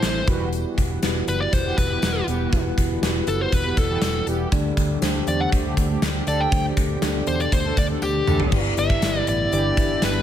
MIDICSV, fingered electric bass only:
0, 0, Header, 1, 2, 480
1, 0, Start_track
1, 0, Key_signature, 1, "major"
1, 0, Tempo, 500000
1, 502, Time_signature, 4, 2, 24, 8
1, 9815, End_track
2, 0, Start_track
2, 0, Title_t, "Fingered electric bass"
2, 0, Program_c, 0, 33
2, 28, Note_on_c, 0, 33, 95
2, 199, Note_off_c, 0, 33, 0
2, 266, Note_on_c, 0, 28, 96
2, 610, Note_off_c, 0, 28, 0
2, 744, Note_on_c, 0, 28, 93
2, 916, Note_off_c, 0, 28, 0
2, 982, Note_on_c, 0, 28, 94
2, 1155, Note_off_c, 0, 28, 0
2, 1222, Note_on_c, 0, 30, 79
2, 1395, Note_off_c, 0, 30, 0
2, 1467, Note_on_c, 0, 28, 96
2, 1638, Note_off_c, 0, 28, 0
2, 1706, Note_on_c, 0, 28, 85
2, 1877, Note_off_c, 0, 28, 0
2, 1940, Note_on_c, 0, 28, 94
2, 2114, Note_off_c, 0, 28, 0
2, 2178, Note_on_c, 0, 28, 90
2, 2352, Note_off_c, 0, 28, 0
2, 2426, Note_on_c, 0, 28, 102
2, 2597, Note_off_c, 0, 28, 0
2, 2665, Note_on_c, 0, 28, 96
2, 2837, Note_off_c, 0, 28, 0
2, 2896, Note_on_c, 0, 28, 106
2, 3071, Note_off_c, 0, 28, 0
2, 3136, Note_on_c, 0, 30, 89
2, 3311, Note_off_c, 0, 30, 0
2, 3382, Note_on_c, 0, 28, 98
2, 3555, Note_off_c, 0, 28, 0
2, 3619, Note_on_c, 0, 28, 91
2, 3793, Note_off_c, 0, 28, 0
2, 3854, Note_on_c, 0, 28, 97
2, 4030, Note_off_c, 0, 28, 0
2, 4091, Note_on_c, 0, 28, 89
2, 4268, Note_off_c, 0, 28, 0
2, 4339, Note_on_c, 0, 38, 106
2, 4513, Note_off_c, 0, 38, 0
2, 4581, Note_on_c, 0, 38, 96
2, 4754, Note_off_c, 0, 38, 0
2, 4813, Note_on_c, 0, 38, 99
2, 4989, Note_off_c, 0, 38, 0
2, 5054, Note_on_c, 0, 40, 83
2, 5230, Note_off_c, 0, 40, 0
2, 5301, Note_on_c, 0, 38, 98
2, 5474, Note_off_c, 0, 38, 0
2, 5539, Note_on_c, 0, 38, 96
2, 5713, Note_off_c, 0, 38, 0
2, 5774, Note_on_c, 0, 38, 96
2, 5950, Note_off_c, 0, 38, 0
2, 6017, Note_on_c, 0, 38, 91
2, 6192, Note_off_c, 0, 38, 0
2, 6259, Note_on_c, 0, 38, 102
2, 6433, Note_off_c, 0, 38, 0
2, 6498, Note_on_c, 0, 38, 91
2, 6672, Note_off_c, 0, 38, 0
2, 6739, Note_on_c, 0, 38, 100
2, 6913, Note_off_c, 0, 38, 0
2, 6980, Note_on_c, 0, 40, 84
2, 7153, Note_off_c, 0, 40, 0
2, 7220, Note_on_c, 0, 38, 106
2, 7394, Note_off_c, 0, 38, 0
2, 7459, Note_on_c, 0, 38, 101
2, 7633, Note_off_c, 0, 38, 0
2, 7699, Note_on_c, 0, 38, 99
2, 7873, Note_off_c, 0, 38, 0
2, 7939, Note_on_c, 0, 38, 92
2, 8113, Note_off_c, 0, 38, 0
2, 8181, Note_on_c, 0, 31, 105
2, 8354, Note_off_c, 0, 31, 0
2, 8419, Note_on_c, 0, 31, 102
2, 8593, Note_off_c, 0, 31, 0
2, 8665, Note_on_c, 0, 31, 104
2, 8837, Note_off_c, 0, 31, 0
2, 8900, Note_on_c, 0, 33, 85
2, 9074, Note_off_c, 0, 33, 0
2, 9144, Note_on_c, 0, 31, 104
2, 9316, Note_off_c, 0, 31, 0
2, 9381, Note_on_c, 0, 31, 86
2, 9554, Note_off_c, 0, 31, 0
2, 9623, Note_on_c, 0, 31, 99
2, 9795, Note_off_c, 0, 31, 0
2, 9815, End_track
0, 0, End_of_file